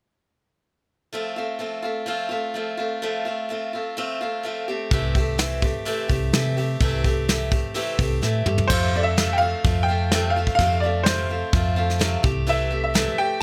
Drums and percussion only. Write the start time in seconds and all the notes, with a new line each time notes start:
4.91 kick, open hi-hat
5.15 kick, open hi-hat
5.38 snare, open hi-hat
5.62 kick, open hi-hat
5.86 open hi-hat
6.10 kick, open hi-hat
6.33 snare, open hi-hat
6.57 open hi-hat
6.81 kick, open hi-hat
7.04 kick, open hi-hat
7.28 snare, open hi-hat
7.52 kick, open hi-hat
7.75 open hi-hat
7.99 kick, open hi-hat
8.23 snare
8.46 mid tom
8.58 floor tom
8.70 kick, crash
9.17 snare, open hi-hat
9.64 kick, open hi-hat
10.11 snare, open hi-hat
10.47 kick
10.59 kick, open hi-hat
11.06 snare, open hi-hat
11.53 kick, open hi-hat
11.90 snare
12.01 snare, open hi-hat
12.24 kick
12.48 open hi-hat
12.95 snare, open hi-hat